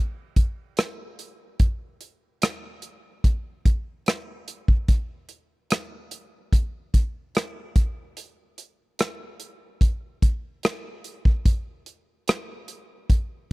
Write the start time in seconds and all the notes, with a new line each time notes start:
0.36 kick, closed hi-hat
0.77 cross-stick, closed hi-hat
1.19 closed hi-hat
1.60 kick, closed hi-hat
2.01 closed hi-hat
2.42 cross-stick, closed hi-hat
2.82 closed hi-hat
3.24 kick, closed hi-hat
3.65 kick, closed hi-hat
4.06 cross-stick, closed hi-hat
4.48 closed hi-hat
4.68 kick
4.88 kick, closed hi-hat
5.29 closed hi-hat
5.70 cross-stick, closed hi-hat
6.11 closed hi-hat
6.53 kick, closed hi-hat
6.94 kick, closed hi-hat
7.35 cross-stick, closed hi-hat
7.76 kick, closed hi-hat
8.17 closed hi-hat
8.58 closed hi-hat
8.99 cross-stick, closed hi-hat
9.40 closed hi-hat
9.81 kick, closed hi-hat
10.22 kick, closed hi-hat
10.63 cross-stick, closed hi-hat
11.04 closed hi-hat
11.25 kick
11.46 kick, closed hi-hat
11.86 closed hi-hat
12.28 cross-stick, closed hi-hat
12.68 closed hi-hat
13.10 kick, closed hi-hat